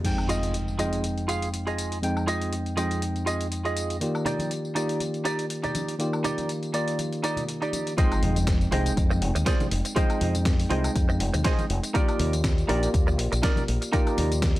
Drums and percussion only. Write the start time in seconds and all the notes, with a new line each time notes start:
0.05 closed hi-hat, tambourine, crash
0.18 tambourine, high woodblock
0.29 closed hi-hat, tambourine
0.43 closed hi-hat, tambourine
0.54 closed hi-hat, tambourine
0.68 tambourine
0.79 closed hi-hat, tambourine
0.93 closed hi-hat, tambourine
1.04 closed hi-hat, tambourine
1.18 closed hi-hat, tambourine
1.29 closed hi-hat, tambourine
1.42 closed hi-hat, tambourine
1.54 closed hi-hat, tambourine
1.67 closed hi-hat, tambourine
1.78 closed hi-hat, tambourine
1.92 closed hi-hat, tambourine
2.03 closed hi-hat, tambourine
2.17 tambourine, high woodblock
2.28 closed hi-hat, tambourine
2.42 closed hi-hat, tambourine
2.53 closed hi-hat, tambourine
2.66 closed hi-hat, tambourine
2.77 closed hi-hat, tambourine
2.91 closed hi-hat, tambourine
3.02 closed hi-hat, tambourine
3.16 closed hi-hat, tambourine
3.27 closed hi-hat, tambourine
3.41 closed hi-hat, tambourine
3.52 closed hi-hat, tambourine
3.65 closed hi-hat, tambourine
3.77 closed hi-hat, tambourine
3.90 closed hi-hat, tambourine
4.01 closed hi-hat, tambourine
4.15 tambourine, high woodblock
4.25 closed hi-hat, tambourine, low conga
4.39 closed hi-hat, tambourine, high conga
4.51 closed hi-hat, tambourine
4.65 tambourine
4.76 closed hi-hat, tambourine
4.89 closed hi-hat, tambourine
5.00 closed hi-hat, tambourine, high conga
5.14 closed hi-hat, tambourine
5.25 closed hi-hat, tambourine
5.39 closed hi-hat, tambourine
5.50 closed hi-hat, tambourine
5.64 closed hi-hat, tambourine, low conga
5.75 closed hi-hat, tambourine, high conga
5.88 closed hi-hat, tambourine
6.00 closed hi-hat, tambourine
6.13 tambourine, high woodblock
6.24 closed hi-hat, tambourine, low conga
6.38 closed hi-hat, tambourine, high conga
6.49 closed hi-hat, tambourine
6.63 closed hi-hat, tambourine
6.74 closed hi-hat, tambourine
6.88 closed hi-hat, tambourine
6.99 closed hi-hat, tambourine, high conga
7.13 closed hi-hat, tambourine
7.24 closed hi-hat, tambourine
7.37 closed hi-hat, tambourine, low conga
7.49 closed hi-hat, tambourine
7.62 closed hi-hat, tambourine
7.73 closed hi-hat, tambourine, high conga
7.87 closed hi-hat, tambourine
7.97 kick, closed hi-hat, tambourine, high conga
8.12 closed hi-hat, tambourine, high woodblock
8.23 open hi-hat, low conga
8.36 closed hi-hat, tambourine, high conga
8.47 kick, snare, closed hi-hat, tambourine
8.61 closed hi-hat, tambourine
8.72 open hi-hat, high conga
8.86 closed hi-hat, tambourine
8.97 kick, closed hi-hat, tambourine
9.11 tambourine, high conga
9.22 open hi-hat
9.36 closed hi-hat, tambourine
9.46 kick, snare, closed hi-hat, tambourine
9.60 closed hi-hat, tambourine, high conga, low conga
9.71 open hi-hat
9.85 closed hi-hat, tambourine
9.96 kick, closed hi-hat, tambourine, high conga
10.10 closed hi-hat, tambourine, high woodblock
10.21 open hi-hat, low conga
10.35 closed hi-hat, tambourine, high conga
10.45 kick, snare, closed hi-hat, tambourine
10.60 open hi-hat, tambourine
10.70 open hi-hat, high conga
10.84 closed hi-hat, tambourine, high woodblock
10.96 kick, closed hi-hat, tambourine
11.09 tambourine, high conga
11.20 open hi-hat
11.34 closed hi-hat, tambourine, low conga
11.44 kick, snare, closed hi-hat, tambourine
11.59 closed hi-hat, tambourine, high conga
11.70 open hi-hat
11.83 closed hi-hat, tambourine
11.95 kick, closed hi-hat, tambourine, high conga
12.08 closed hi-hat, tambourine, high woodblock
12.19 open hi-hat, low conga
12.33 closed hi-hat, tambourine, high conga
12.44 kick, snare, closed hi-hat, tambourine
12.58 closed hi-hat, tambourine
12.69 open hi-hat, high conga
12.83 closed hi-hat, tambourine
12.94 kick, closed hi-hat, tambourine
13.07 tambourine, high conga
13.19 open hi-hat
13.33 closed hi-hat, tambourine
13.43 kick, snare, closed hi-hat, tambourine
13.56 closed hi-hat, tambourine, high conga, low conga
13.68 open hi-hat
13.82 closed hi-hat, tambourine
13.93 kick, closed hi-hat, tambourine, high conga
14.07 closed hi-hat, tambourine, high woodblock
14.17 open hi-hat, low conga
14.31 closed hi-hat, tambourine, high conga
14.42 kick, snare, closed hi-hat, tambourine
14.56 open hi-hat